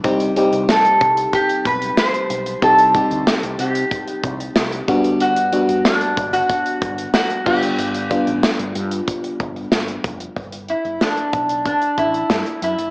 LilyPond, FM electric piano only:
<<
  \new Staff \with { instrumentName = "FM electric piano" } { \time 4/4 \key g \major \tempo 4 = 93 <g c' ees' g'>8 <g c' ees' g'>4. r2 | <g c' ees' g'>8 <g c' ees' g'>4. r4. <g b d' fis'>8~ | <g b d' fis'>8 <g b d' fis'>4. r4. <g b d' f'>8~ | <g b d' f'>8 <g b d' f'>4. r2 |
r1 | }
  \new Staff \with { instrumentName = "FM electric piano" } { \clef bass \time 4/4 \key g \major c4. r2 r8 | c4. r2 g,8~ | g,4 r2 r8 g,8~ | g,4 r2. |
r1 | }
>>